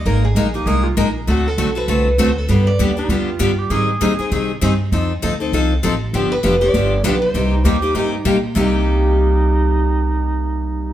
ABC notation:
X:1
M:4/4
L:1/16
Q:"Swing" 1/4=198
K:Cm
V:1 name="Steel-string acoustic guitar"
B2 A4 z8 z2 | ^F2 =A4 =B6 c2 A2 | =B2 d4 z8 z2 | z16 |
z16 | G2 =B4 d6 B2 c2- | c12 z4 | z16 |
z16 |]
V:2 name="Clarinet"
z6 G2 A2 F2 E3 z | z16 | z6 D E F6 G2 | A8 z8 |
z16 | z16 | z2 E2 G4 E4 z4 | E16- |
E16 |]
V:3 name="Steel-string acoustic guitar"
[A,B,EB]2 z2 [A,B,EB]2 [B,EB]2 [A,B,EB]2 z2 [A,B,EB]2 z2 | [D,=A,C^F=A]2 z2 [D,A,CFA]2 [CFA]2 [D,A,CFA]2 z2 [D,A,CFA]2 z2 | [D,G,=B,DG]2 z2 [D,G,B,DG]2 [B,DG]2 [D,G,B,DG]2 z2 [D,G,B,DG]2 z2 | [E,G,CEA]2 z2 [E,G,CEA]2 [CEA]2 [E,G,CEA]2 z2 [E,G,CEA]2 z2 |
[F,CE=A]2 z2 [F,CEA]2 [CEA]2 [F,CEA]2 z2 [F,CEA]2 z2 | [D,F,=B,DG]2 z2 [D,F,B,DG]2 [B,DG]2 [D,F,B,DG]2 z2 [D,F,B,DG]2 z2 | [C,G,B,EG]2 z2 [C,G,B,EG]2 [B,EG]2 [C,G,B,EG]2 z2 [C,G,B,EG]2 z2 | [C,G,B,EG]16- |
[C,G,B,EG]16 |]
V:4 name="Steel-string acoustic guitar"
[A,B,EB]2 z2 [A,B,EB]2 z2 [A,B,EB]2 z2 [A,B,EB]2 z2 | [D,=A,C^F=A]2 z2 [D,A,CFA]2 z2 [D,A,CFA]2 z2 [D,A,CFA]2 z2 | [D,G,=B,DG]2 z2 [D,G,B,DG]2 z2 [D,G,B,DG]2 z2 [D,G,B,DG]2 z2 | [E,G,CEA]2 z2 [E,G,CEA]2 z2 [E,G,CEA]2 z2 [E,G,CEA]2 z2 |
[F,CE=A]2 z2 [F,CEA]2 z2 [F,CEA]2 z2 [F,CEA]2 z2 | [D,F,=B,DG]2 z2 [D,F,B,DG]2 z2 [D,F,B,DG]2 z2 [D,F,B,DG]2 z2 | [C,G,B,EG]2 z2 [C,G,B,EG]2 z2 [C,G,B,EG]2 z2 [C,G,B,EG]2 z2 | [C,G,B,EG]16- |
[C,G,B,EG]16 |]
V:5 name="Upright bass" clef=bass
A,,,4 B,,,4 C,,4 B,,,4 | D,,4 =B,,,4 C,,4 D,,4 | G,,4 E,,4 F,,4 G,,4 | A,,4 B,,2 z2 C,4 G,,4 |
F,,4 D,,4 C,,4 =A,,,4 | G,,,4 F,,,4 G,,,4 =B,,,4 | C,,4 E,,4 G,,4 B,,4 | C,,16- |
C,,16 |]